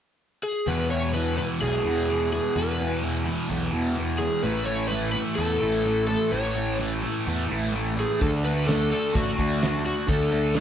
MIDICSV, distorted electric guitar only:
0, 0, Header, 1, 2, 480
1, 0, Start_track
1, 0, Tempo, 470958
1, 680, Time_signature, 4, 2, 24, 8
1, 10806, End_track
2, 0, Start_track
2, 0, Title_t, "Distorted electric guitar"
2, 0, Program_c, 0, 30
2, 681, Note_on_c, 0, 40, 80
2, 691, Note_on_c, 0, 47, 82
2, 701, Note_on_c, 0, 52, 88
2, 923, Note_off_c, 0, 52, 0
2, 927, Note_on_c, 0, 52, 59
2, 935, Note_off_c, 0, 47, 0
2, 947, Note_on_c, 0, 47, 51
2, 1154, Note_off_c, 0, 40, 0
2, 1155, Note_off_c, 0, 47, 0
2, 1158, Note_on_c, 0, 40, 61
2, 1167, Note_on_c, 0, 47, 66
2, 1181, Note_off_c, 0, 52, 0
2, 1185, Note_on_c, 0, 52, 71
2, 1394, Note_off_c, 0, 52, 0
2, 1398, Note_on_c, 0, 52, 81
2, 1402, Note_off_c, 0, 47, 0
2, 1415, Note_on_c, 0, 47, 67
2, 1418, Note_off_c, 0, 40, 0
2, 1422, Note_on_c, 0, 40, 64
2, 1625, Note_off_c, 0, 40, 0
2, 1637, Note_on_c, 0, 40, 61
2, 1642, Note_off_c, 0, 47, 0
2, 1654, Note_on_c, 0, 47, 73
2, 1661, Note_off_c, 0, 52, 0
2, 1665, Note_on_c, 0, 52, 74
2, 1879, Note_off_c, 0, 52, 0
2, 1883, Note_on_c, 0, 52, 84
2, 1884, Note_off_c, 0, 47, 0
2, 1896, Note_on_c, 0, 47, 66
2, 1898, Note_off_c, 0, 40, 0
2, 1910, Note_on_c, 0, 40, 67
2, 2115, Note_off_c, 0, 40, 0
2, 2121, Note_off_c, 0, 47, 0
2, 2127, Note_on_c, 0, 40, 58
2, 2133, Note_on_c, 0, 47, 74
2, 2143, Note_off_c, 0, 52, 0
2, 2147, Note_on_c, 0, 52, 72
2, 2355, Note_off_c, 0, 52, 0
2, 2359, Note_on_c, 0, 52, 65
2, 2373, Note_off_c, 0, 47, 0
2, 2385, Note_on_c, 0, 47, 54
2, 2597, Note_off_c, 0, 40, 0
2, 2609, Note_off_c, 0, 47, 0
2, 2609, Note_on_c, 0, 40, 81
2, 2621, Note_on_c, 0, 47, 86
2, 2627, Note_off_c, 0, 52, 0
2, 2631, Note_on_c, 0, 52, 83
2, 2837, Note_off_c, 0, 52, 0
2, 2841, Note_on_c, 0, 52, 62
2, 2851, Note_off_c, 0, 47, 0
2, 2863, Note_on_c, 0, 47, 56
2, 3067, Note_off_c, 0, 40, 0
2, 3079, Note_on_c, 0, 40, 68
2, 3082, Note_off_c, 0, 47, 0
2, 3094, Note_on_c, 0, 47, 75
2, 3099, Note_off_c, 0, 52, 0
2, 3104, Note_on_c, 0, 52, 72
2, 3301, Note_off_c, 0, 52, 0
2, 3305, Note_on_c, 0, 52, 90
2, 3306, Note_off_c, 0, 47, 0
2, 3313, Note_off_c, 0, 40, 0
2, 3318, Note_on_c, 0, 47, 72
2, 3326, Note_on_c, 0, 40, 73
2, 3539, Note_off_c, 0, 40, 0
2, 3552, Note_on_c, 0, 40, 63
2, 3553, Note_off_c, 0, 47, 0
2, 3565, Note_on_c, 0, 47, 76
2, 3573, Note_off_c, 0, 52, 0
2, 3577, Note_on_c, 0, 52, 73
2, 3783, Note_off_c, 0, 52, 0
2, 3787, Note_on_c, 0, 52, 78
2, 3791, Note_off_c, 0, 47, 0
2, 3803, Note_on_c, 0, 47, 71
2, 3804, Note_off_c, 0, 40, 0
2, 3816, Note_on_c, 0, 40, 61
2, 4026, Note_off_c, 0, 40, 0
2, 4038, Note_on_c, 0, 40, 64
2, 4046, Note_off_c, 0, 47, 0
2, 4058, Note_on_c, 0, 47, 64
2, 4064, Note_off_c, 0, 52, 0
2, 4068, Note_on_c, 0, 52, 81
2, 4276, Note_off_c, 0, 52, 0
2, 4280, Note_on_c, 0, 52, 67
2, 4294, Note_off_c, 0, 47, 0
2, 4307, Note_on_c, 0, 47, 58
2, 4509, Note_off_c, 0, 40, 0
2, 4514, Note_off_c, 0, 47, 0
2, 4518, Note_on_c, 0, 45, 85
2, 4529, Note_off_c, 0, 52, 0
2, 4533, Note_on_c, 0, 52, 81
2, 4541, Note_on_c, 0, 57, 90
2, 4753, Note_off_c, 0, 57, 0
2, 4757, Note_on_c, 0, 57, 60
2, 4779, Note_off_c, 0, 52, 0
2, 4783, Note_on_c, 0, 52, 59
2, 4999, Note_off_c, 0, 45, 0
2, 5003, Note_on_c, 0, 45, 69
2, 5013, Note_off_c, 0, 52, 0
2, 5017, Note_on_c, 0, 52, 71
2, 5024, Note_off_c, 0, 57, 0
2, 5028, Note_on_c, 0, 57, 76
2, 5231, Note_off_c, 0, 57, 0
2, 5235, Note_on_c, 0, 57, 85
2, 5246, Note_off_c, 0, 52, 0
2, 5250, Note_on_c, 0, 52, 74
2, 5258, Note_off_c, 0, 45, 0
2, 5262, Note_on_c, 0, 45, 66
2, 5470, Note_off_c, 0, 45, 0
2, 5479, Note_off_c, 0, 52, 0
2, 5482, Note_on_c, 0, 45, 62
2, 5491, Note_on_c, 0, 52, 75
2, 5498, Note_off_c, 0, 57, 0
2, 5502, Note_on_c, 0, 57, 67
2, 5716, Note_off_c, 0, 57, 0
2, 5720, Note_on_c, 0, 57, 77
2, 5721, Note_off_c, 0, 52, 0
2, 5730, Note_off_c, 0, 45, 0
2, 5733, Note_on_c, 0, 52, 77
2, 5742, Note_on_c, 0, 45, 71
2, 5950, Note_off_c, 0, 45, 0
2, 5962, Note_on_c, 0, 45, 67
2, 5965, Note_off_c, 0, 52, 0
2, 5978, Note_on_c, 0, 52, 75
2, 5989, Note_off_c, 0, 57, 0
2, 5993, Note_on_c, 0, 57, 69
2, 6198, Note_off_c, 0, 57, 0
2, 6202, Note_on_c, 0, 57, 67
2, 6211, Note_off_c, 0, 52, 0
2, 6224, Note_on_c, 0, 52, 50
2, 6428, Note_off_c, 0, 45, 0
2, 6440, Note_off_c, 0, 52, 0
2, 6441, Note_on_c, 0, 45, 79
2, 6452, Note_on_c, 0, 52, 84
2, 6462, Note_off_c, 0, 57, 0
2, 6466, Note_on_c, 0, 57, 86
2, 6678, Note_off_c, 0, 57, 0
2, 6682, Note_on_c, 0, 57, 65
2, 6694, Note_off_c, 0, 52, 0
2, 6706, Note_on_c, 0, 52, 50
2, 6916, Note_off_c, 0, 45, 0
2, 6929, Note_on_c, 0, 45, 71
2, 6931, Note_off_c, 0, 52, 0
2, 6943, Note_on_c, 0, 52, 70
2, 6947, Note_off_c, 0, 57, 0
2, 6951, Note_on_c, 0, 57, 73
2, 7155, Note_off_c, 0, 57, 0
2, 7156, Note_off_c, 0, 52, 0
2, 7159, Note_on_c, 0, 57, 75
2, 7168, Note_on_c, 0, 52, 77
2, 7172, Note_off_c, 0, 45, 0
2, 7184, Note_on_c, 0, 45, 66
2, 7395, Note_off_c, 0, 45, 0
2, 7404, Note_off_c, 0, 52, 0
2, 7407, Note_on_c, 0, 45, 63
2, 7417, Note_on_c, 0, 52, 68
2, 7425, Note_off_c, 0, 57, 0
2, 7429, Note_on_c, 0, 57, 81
2, 7638, Note_off_c, 0, 57, 0
2, 7643, Note_on_c, 0, 57, 75
2, 7645, Note_off_c, 0, 52, 0
2, 7656, Note_off_c, 0, 45, 0
2, 7657, Note_on_c, 0, 52, 71
2, 7668, Note_on_c, 0, 45, 63
2, 7861, Note_off_c, 0, 45, 0
2, 7873, Note_on_c, 0, 45, 62
2, 7877, Note_off_c, 0, 52, 0
2, 7889, Note_on_c, 0, 52, 78
2, 7894, Note_off_c, 0, 57, 0
2, 7898, Note_on_c, 0, 57, 74
2, 8117, Note_off_c, 0, 57, 0
2, 8121, Note_on_c, 0, 57, 72
2, 8139, Note_off_c, 0, 52, 0
2, 8151, Note_on_c, 0, 52, 57
2, 8344, Note_off_c, 0, 45, 0
2, 8360, Note_on_c, 0, 50, 85
2, 8364, Note_off_c, 0, 52, 0
2, 8372, Note_off_c, 0, 57, 0
2, 8372, Note_on_c, 0, 57, 86
2, 8385, Note_on_c, 0, 62, 89
2, 8604, Note_off_c, 0, 62, 0
2, 8608, Note_on_c, 0, 62, 61
2, 8631, Note_off_c, 0, 57, 0
2, 8636, Note_on_c, 0, 57, 51
2, 8835, Note_off_c, 0, 50, 0
2, 8839, Note_on_c, 0, 50, 67
2, 8851, Note_off_c, 0, 57, 0
2, 8855, Note_on_c, 0, 57, 77
2, 8860, Note_off_c, 0, 62, 0
2, 8864, Note_on_c, 0, 62, 76
2, 9081, Note_off_c, 0, 62, 0
2, 9085, Note_on_c, 0, 62, 82
2, 9098, Note_off_c, 0, 57, 0
2, 9102, Note_on_c, 0, 57, 76
2, 9105, Note_off_c, 0, 50, 0
2, 9109, Note_on_c, 0, 50, 66
2, 9299, Note_off_c, 0, 50, 0
2, 9312, Note_on_c, 0, 50, 70
2, 9321, Note_off_c, 0, 62, 0
2, 9323, Note_off_c, 0, 57, 0
2, 9327, Note_on_c, 0, 57, 73
2, 9334, Note_on_c, 0, 62, 75
2, 9543, Note_off_c, 0, 62, 0
2, 9555, Note_on_c, 0, 62, 81
2, 9561, Note_off_c, 0, 57, 0
2, 9565, Note_off_c, 0, 50, 0
2, 9565, Note_on_c, 0, 57, 68
2, 9577, Note_on_c, 0, 50, 68
2, 9779, Note_off_c, 0, 50, 0
2, 9791, Note_on_c, 0, 50, 60
2, 9803, Note_off_c, 0, 62, 0
2, 9804, Note_off_c, 0, 57, 0
2, 9809, Note_on_c, 0, 57, 71
2, 9815, Note_on_c, 0, 62, 73
2, 10015, Note_off_c, 0, 62, 0
2, 10027, Note_on_c, 0, 62, 76
2, 10048, Note_off_c, 0, 57, 0
2, 10052, Note_on_c, 0, 57, 52
2, 10249, Note_off_c, 0, 50, 0
2, 10261, Note_on_c, 0, 50, 81
2, 10273, Note_off_c, 0, 57, 0
2, 10275, Note_off_c, 0, 62, 0
2, 10277, Note_on_c, 0, 57, 81
2, 10287, Note_on_c, 0, 62, 93
2, 10499, Note_off_c, 0, 62, 0
2, 10511, Note_on_c, 0, 62, 66
2, 10526, Note_off_c, 0, 57, 0
2, 10530, Note_on_c, 0, 57, 49
2, 10738, Note_off_c, 0, 50, 0
2, 10750, Note_on_c, 0, 50, 66
2, 10762, Note_off_c, 0, 62, 0
2, 10764, Note_off_c, 0, 57, 0
2, 10768, Note_on_c, 0, 57, 69
2, 10774, Note_on_c, 0, 62, 75
2, 10806, Note_off_c, 0, 50, 0
2, 10806, Note_off_c, 0, 57, 0
2, 10806, Note_off_c, 0, 62, 0
2, 10806, End_track
0, 0, End_of_file